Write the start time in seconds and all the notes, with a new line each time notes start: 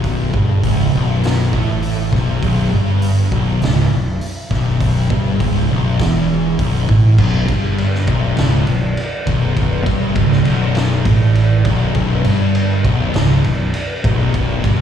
Already playing: B0 B1
0.04 kick, open hi-hat
0.34 G1 G2, kick
0.63 C#1 C#2, kick, open hi-hat
0.93 B0 B1
1.23 snare, open hi-hat
1.52 A1 A2, kick
1.82 open hi-hat
2.12 B0 B1, kick, snare
2.42 B0 B1, kick, open hi-hat
2.72 G1 G2
3.02 open hi-hat
3.32 B0 B1, kick
3.61 C#1 C#2, snare, open hi-hat
3.91 B0 B1
4.21 open hi-hat
4.50 B0 B1, kick, snare
4.80 kick, open hi-hat
5.10 G1 G2, kick
5.40 C#1 C#2, kick, open hi-hat
5.69 B0 B1
5.99 E1 E2, kick, snare, open hi-hat
6.59 B0 B1, kick, open hi-hat
6.89 A1 A2, kick
7.18 B0 B1, kick, crash
7.47 G1 G2, kick, ride
7.78 ride
7.95 snare
8.07 B0 B1, kick, ride
8.37 C#1 C#2, snare, ride
8.67 B0 B1, ride
8.97 ride
9.26 B0 B1, kick, ride
9.57 kick, ride
9.86 G1 G2, kick, ride
10.15 C#1 C#2, kick, ride
10.32 snare
10.45 B0 B1, ride
10.75 snare, ride
11.05 A1 A2, kick, ride
11.35 ride
11.65 B0 B1, kick, ride
11.95 B0 B1, kick, ride
12.24 G1 G2, ride
12.55 ride
12.85 B0 B1, kick, ride
13.14 C#1 C#2, snare, ride
13.44 B0 B1, ride
13.74 ride
14.04 B0 B1, kick, ride
14.34 kick, ride
14.64 G1 G2, kick, ride